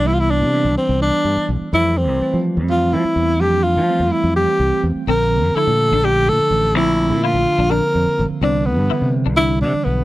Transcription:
<<
  \new Staff \with { instrumentName = "Tenor saxophone" } { \time 7/8 \key c \major \tempo 4 = 126 e'32 f'32 e'16 d'4 c'8 d'4~ d'32 r16. | e'8 c'8.~ c'32 r8 r32 f'8 e'4 | g'8 f'4 e'8 g'4~ g'32 r16. | bes'4 a'4 g'8 a'4 |
e'4 f'4 bes'4~ bes'32 r16. | d'8 b4 r8 e'8 d'8 b8 | }
  \new Staff \with { instrumentName = "Clean electric guitar" } { \time 7/8 \key c \major r2. r8 | r2. r8 | r2. r8 | c'8 r8 e'8 r16 d'16 d'8 r4 |
c'8 r8 e'8 r16 d'16 d'8 r4 | c'8 r8 e'8 r16 d'16 d'8 r4 | }
  \new Staff \with { instrumentName = "Tine electric piano" } { \clef bass \time 7/8 \key c \major <e g b e'>4 <e g b d'>4 <e g b d'>4. | <e g a c'>4 <e g a c'>4 <e g a c'>4. | <e g a d'>4 <e g a c'>4 <e g a c'>4. | <d f bes c'>4 <d f a d'>4 <d f a d'>4. |
<d f a c'>4 <d f a d'>4 <d f bes c'>4. | <d e g b>4 <d e g b>4 <d e g d'>4. | }
  \new Staff \with { instrumentName = "Fingered electric bass" } { \clef bass \time 7/8 \key c \major c,8. c8 c,16 r16 c,8 r16 g,16 r16 b,,16 r16 | f,8. c,16 r16 f8 f,8. f16 r16 e,8 | f,8. f8 f,16 r16 f,8 r16 c,16 r16 e,16 r16 | bes,,8. f,16 r16 bes,8 bes,,8. bes,16 r16 a,,8 |
bes,,8. bes,8 bes,,16 r16 bes,,8 r16 f,16 r16 a,,16 r16 | c,8. g,16 r16 c8 c,8. c16 r16 b,,8 | }
>>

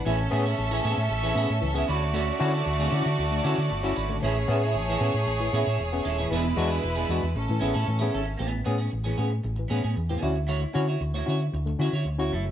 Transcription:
<<
  \new Staff \with { instrumentName = "Violin section" } { \time 4/4 \key a \major \tempo 4 = 115 <cis' a' e''>2.~ <cis' a' e''>8 <a fis' d''>8~ | <a fis' d''>1 | <a gis' cis''>1 | <gis e' b'>2 <cis' a'>2 |
r1 | r1 | }
  \new Staff \with { instrumentName = "Clean electric guitar" } { \time 4/4 \key a \major <cis' e' gis'>8 <cis' e' gis'>16 <cis' e' gis'>16 r16 <cis' e' gis'>16 <cis' e' gis'>16 r8 <cis' e' gis'>16 <cis' e' gis'>16 r8 <cis' e' gis'>16 <cis' fis' b'>16 r16 | <cis' fis' a'>8 <cis' fis' a'>16 <cis' fis' a'>16 r16 <cis' fis' a'>16 <cis' fis' a'>16 r8. <cis' fis' a'>16 <cis' fis' a'>16 r16 <cis' fis' a'>16 <cis' fis' b'>16 r16 | <cis' e' gis'>8 <cis' e' gis'>16 <cis' e' gis'>16 r16 <cis' e' gis'>16 <cis' e' gis'>16 r8. <cis' e' gis'>16 <cis' e' gis'>16 r8 <cis' e' a'>16 <cis' e' gis'>16 | <b d' gis'>8 <b d' gis'>16 <b d' gis'>16 r16 <b d' gis'>16 <b d' gis'>16 r8. <cis' e' gis'>16 <cis' e' gis'>16 r16 <cis' e' gis'>16 <cis' e' a'>16 r16 |
<b cis' gis'>8 <b cis' gis'>16 <b cis' gis'>16 r16 <b cis' gis'>16 <b cis' gis'>16 r8. <b cis' gis'>16 <b cis' gis'>16 r16 <b cis' gis'>16 <e' fis' d''>16 r16 | <e' fis' cis''>8 <e' fis' cis''>16 <e' fis' cis''>16 r16 <e' fis' cis''>16 <e' fis' cis''>16 r8. <e' fis' cis''>16 <e' fis' cis''>16 r16 <e' fis' cis''>16 <a e' a'>16 r16 | }
  \new Staff \with { instrumentName = "Tine electric piano" } { \time 4/4 \key a \major <a, e>16 r16 <b cis' gis'>16 <cis' gis'>16 <cis' gis'>16 <a, e>16 <b cis' gis'>16 r16 <cis' gis'>16 <a, e>16 <b cis' gis'>16 r16 <a, e>16 <b cis' gis'>16 <e' fis'>16 r16 | <d a>16 r16 <cis' e' fis'>16 <e' fis'>16 <e' fis'>16 <d a>16 <cis' e' fis'>16 r16 <e' fis'>16 <d a>16 <cis' e' fis'>16 r8 <cis' e' fis'>16 r16 <d a>16 | <a, e>16 r16 <b cis' gis'>16 <cis' gis'>16 cis'16 <a, e>16 <b cis' gis'>16 r16 <cis' gis'>16 <a, e>16 <b cis' gis'>16 r8 <b cis' gis'>16 r16 <a, e>16 | e16 r16 <gis d' fis'>16 <d' fis'>16 <d' fis'>16 e16 <gis d' fis'>16 r16 <cis' gis'>16 <a, e>16 <b cis' gis'>16 r16 <a, e>16 <b cis' gis'>16 <cis' gis'>16 r16 |
<a, e>16 r16 <b cis' gis'>16 <cis' gis'>16 <cis' gis'>16 <a, e>16 <b cis' gis'>16 r16 <cis' gis'>16 <a, e>16 <b cis' gis'>16 r16 <cis' gis'>16 <a, e>16 <cis' e' fis'>16 r16 | <d a>16 r16 <cis' e' fis'>16 <e' fis'>16 <e' fis'>16 <d a>16 <cis' e' fis'>16 r16 <e' fis'>16 <d a>16 <cis' e' fis'>16 r8 <cis' e' fis'>16 r16 fis16 | }
  \new Staff \with { instrumentName = "Fingered electric bass" } { \clef bass \time 4/4 \key a \major a,,8 a,8 a,,8 a,16 a,16 a,,8 a,16 a,16 cis,8 d,8~ | d,8 d8 d,8 d16 d16 d,8 d16 d16 g,,8 gis,,8 | a,,8 a,8 a,,8 a,16 a,16 a,,8 a,16 a,16 e,,8 dis,,8 | e,,8 e,8 e,,8 e,16 e,16 a,,16 a,16 a,,16 a,16 a,8 gis,,8 |
a,,8 a,8 a,,8 a,8 a,,8 a,16 a,16 e,8 d,8~ | d,8 d8 d,8 d8 d,8 d16 d16 d,8 fis,,8 | }
>>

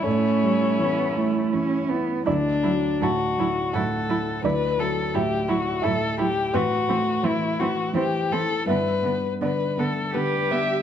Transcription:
<<
  \new Staff \with { instrumentName = "Violin" } { \time 3/4 \key a \dorian \tempo 4 = 82 cis'2~ cis'8 r8 | d'4 fis'4 a'4 | b'8 a'8 g'8 fis'8 a'8 g'8 | fis'4 e'8 fis'8 g'8 a'8 |
b'4 b'8 a'8 b'8 e''8 | }
  \new Staff \with { instrumentName = "Viola" } { \time 3/4 \key a \dorian e'2~ e'8 r8 | e'8 e'8 e'8 e'8 e'8 e'8 | e'8 e'8 e'8 e'8 e'8 e'8 | c'8 c'8 c'8 c'8 c'8 c'8 |
b8 b8 b8 b8 b8 b8 | }
  \new Staff \with { instrumentName = "Felt piano" } { \time 3/4 \key a \dorian a'2~ a'8 r8 | d''4 a''4 fis''4 | d''4 e''4 e''4 | b'2 c''4 |
e''4 d''4. r8 | }
  \new Staff \with { instrumentName = "Felt piano" } { \clef bass \time 3/4 \key a \dorian <a, e'>8 g8 e8 e'8 e8 e'8 | d,8 fis8 a,8 e'8 a,8 e'8 | d,8 fis8 a,8 e'8 a,8 e'8 | a,8 a8 e8 e'8 e8 e'8 |
g,8 b8 d8 b8 d8 b8 | }
  \new Staff \with { instrumentName = "Cello" } { \clef bass \time 3/4 \key a \dorian a4 b8 a8 cis'8 b8 | fis8 fis8 fis8 fis8 fis8 fis8 | fis8 fis8 fis8 fis8 fis8 fis8 | e8 e8 e8 e8 e8 e8 |
d8 d8 d8 d8 g'4 | }
>>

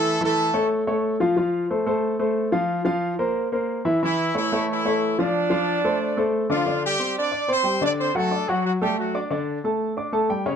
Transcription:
<<
  \new Staff \with { instrumentName = "Grand piano" } { \time 4/4 \key d \minor \tempo 4 = 182 <e e' e''>8 <e e' e''>4 <a a' cis''>4 <a a' cis''>4 <f f' f''>8 | <f f' f''>4 <a a' c''>8 <a a' c''>4 <a a' c''>4 <f f' f''>8~ | <f f' f''>8 <f f' f''>4 <bes bes' c''>4 <bes bes' c''>4 <e e' e''>8 | <e e' e''>4 <a a' cis''>8 <a a' cis''>4 <a a' cis''>4 <f f' f''>8~ |
<f f' f''>8 <f f' f''>4 <a a' c''>4 <a a' c''>4 <d d' d''>8 | <d d' d''>4 <c' c'' c'''>4 <d' d'' d'''>8 <c' c'' c'''>8 <g g' g''>8 <d d' d''>8~ | <d d' d''>8 <fis fis' fis''>8 <d' d'' d'''>8 <fis fis' fis''>4 <a a' a''>4 <d' d'' d'''>8 | <d d' d''>4 <a a' a''>4 <d' d'' d'''>8 <a a' a''>8 <g g' g''>8 <cis cis' cis''>8 | }
  \new Staff \with { instrumentName = "Horn section" } { \time 4/4 \key d \minor <a a'>8 <a a'>4. r2 | r1 | r1 | <e e'>4 <e e'>4 <e e'>4. <d' d''>8~ |
<d' d''>2. r8 <f f'>8~ | <f f'>8 <g g'>4 <d' d''>4 <c' c''>4 <d' d''>8 | <c' c''>8 <a a'>4 <fis fis'>8 <fis fis'>8 <g g'>8 <fis fis'>8. r16 | r1 | }
>>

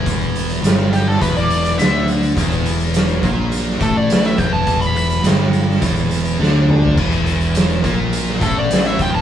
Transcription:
<<
  \new Staff \with { instrumentName = "Lead electric guitar" } { \time 4/4 \key e \minor \tempo 4 = 104 r4. g'16 a'16 b'16 d''8. e''8 r8 | r2 r8 a'16 d''8 e''16 g''16 a''16~ | a''16 b''16 b''8 r2. | r2 r8 a'16 d''8 e''16 g''16 a''16 | }
  \new Staff \with { instrumentName = "Distorted electric guitar" } { \clef bass \time 4/4 \key e \minor <e, e>4 <g, g>4 <e, e>4 <d d'>4 | <e, e>4. <ais, ais>4 <a, a>4 <e, e>8~ | <e, e>4 <g, g>4 <e, e>4 <d d'>4 | <e, e>4. <ais, ais>4 <a, a>4 <e, e>8 | }
  \new Staff \with { instrumentName = "Distorted electric guitar" } { \clef bass \time 4/4 \key e \minor <e, e>4 <g, g>4 <e, e>4 <d d'>4 | <e, e>4. <ais, ais>4 <a, a>4 <e, e>8~ | <e, e>4 <g, g>4 <e, e>4 <d d'>4 | <e, e>4. <ais, ais>4 <a, a>4 <e, e>8 | }
  \new Staff \with { instrumentName = "Fingered electric bass" } { \clef bass \time 4/4 \key e \minor e,,4 g,,4 e,,4 d,4 | e,,4. ais,,4 a,,4 e,,8~ | e,,4 g,,4 e,,4 d,4 | e,,4. ais,,4 a,,4 e,,8 | }
  \new DrumStaff \with { instrumentName = "Drums" } \drummode { \time 4/4 <hh bd>16 hh16 hh16 hh16 <hh sn>8 hh16 sn16 <hh bd>16 hh16 hh16 hh16 <hh sn>8 hh16 hh16 | <hh bd>16 hh16 hh16 hh16 <hh sn>16 hh16 <hh bd>8 hh16 sn16 <hh bd>8 <hh sn>16 hh16 <hh bd>8 | <hh bd>16 hh16 hh16 hh16 <hh sn>8 hh16 sn16 <hh bd>16 hh16 hh16 hh16 sn8 toml16 tomfh16 | <cymc bd>16 hh16 hh16 hh16 <hh sn>16 hh16 <hh bd>8 hh16 sn16 <hh bd>8 <hh sn>16 hh16 <hh bd>8 | }
>>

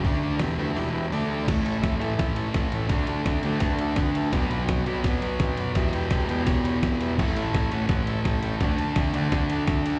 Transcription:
<<
  \new Staff \with { instrumentName = "Transistor combo organ" } { \time 4/4 \key d \mixolydian \tempo 4 = 168 <d' a' d''>8 <d' a' d''>8 <e' g' b'>8 <e' g' b'>8 <e' g' d''>8 <e' g' b'>8 <d' a' d''>8 <d' a' d''>8 | \key a \mixolydian <e' a' cis''>8 <e' a' cis''>8 <e' a' e''>8 <e' a' cis''>8 <e' a' e''>8 <e' a' cis''>8 <e' a' b'>8 <e' a' cis''>8 | <fis' a' d''>8 <fis' a' d''>8 <fis' a' d''>8 <fis' a' d'' g''>8 <fis' a' b' a''>8 <fis' a' d'' e''>8 <fis' a' b' fis''>8 <fis' a' b' e''>8 | <fis' b' d''>8 <fis' b' d''>8 <fis' b' cis''>8 <fis' b' d''>8 <fis' b' d''>8 <fis' b' d''>8 <fis' b' e''>8 <fis' b' d''>8 |
<g' b' e''>8 <g' b' g''>8 <g' b' g''>8 <g' b' g''>8 <g' b' cis''>8 <g' b' cis''>8 <g' b' e''>8 <g' b' e''>8 | <a' cis'' e''>8 <a' cis'' e''>8 <a' cis'' e''>8 <a' cis'' fis''>8 <a' cis'' fis''>8 <a' cis'' e''>8 <a' cis'' g''>8 <a' cis'' g''>8 | <a' d'' fis''>8 <a' d'' a''>8 <a' d'' a''>8 <a' d'' fis''>8 <a' d'' fis''>8 <a' d'' fis''>8 <a' d'' e''>8 <a' d'' fis''>8 | }
  \new Staff \with { instrumentName = "Distorted electric guitar" } { \clef bass \time 4/4 \key d \mixolydian <d a d'>4 <e, b, e>8 <d a d'>8 <e, b, e>4 <d a d'>4 | \key a \mixolydian <a, e a>4. <a, e a>2~ <a, e a>8 | <d a d'>4. <d a d'>2~ <d a d'>8 | <b, fis b>4. <b, fis b>2~ <b, fis b>8 |
<e, b, e>4. <e, b, e>2~ <e, b, e>8 | <a, e a>4. <a, e a>2~ <a, e a>8 | <d a d'>4. <d a d'>2~ <d a d'>8 | }
  \new Staff \with { instrumentName = "Picked electric bass" } { \clef bass \time 4/4 \key d \mixolydian d,4 e,,8 d,8 e,,4 d,4 | \key a \mixolydian a,,8 a,,8 a,,8 a,,8 a,,8 a,,8 a,,8 a,,8 | d,8 d,8 d,8 d,8 d,8 d,8 d,8 d,8 | b,,8 b,,8 b,,8 b,,8 b,,8 b,,8 b,,8 fis,8 |
e,,8 e,,8 e,,8 e,,8 e,,8 e,,8 e,,8 e,,8 | a,,8 a,,8 a,,8 a,,8 a,,8 a,,8 a,,8 a,,8 | d,8 d,8 d,8 d,8 d,8 d,8 d,8 d,8 | }
  \new DrumStaff \with { instrumentName = "Drums" } \drummode { \time 4/4 <hho bd>4 <hho sn>4 hho4 hho4 | <cymc bd cymr sn>8 cymr8 <bd cymr sn>8 cymr8 <bd cymr sn>8 cymr8 <bd cymr sn>8 cymr8 | <bd cymr sn>8 cymr8 <bd cymr sn>8 cymr8 <bd cymr sn>8 cymr8 <bd cymr sn>8 cymr8 | <bd cymr sn>8 cymr8 <bd cymr sn>8 cymr8 <bd cymr sn>8 cymr8 <bd cymr sn>8 cymr8 |
<bd cymr sn>8 cymr8 <bd cymr sn>8 cymr8 <bd cymr sn>8 cymr8 <bd cymr sn>8 cymr8 | <cymc bd sn>8 cymr8 <bd cymr sn>8 cymr8 <bd cymr sn>8 cymr8 <bd cymr sn>8 cymr8 | <bd cymr sn>8 cymr8 <bd cymr sn>8 cymr8 <bd cymr sn>8 cymr8 <bd cymr sn>8 cymr8 | }
>>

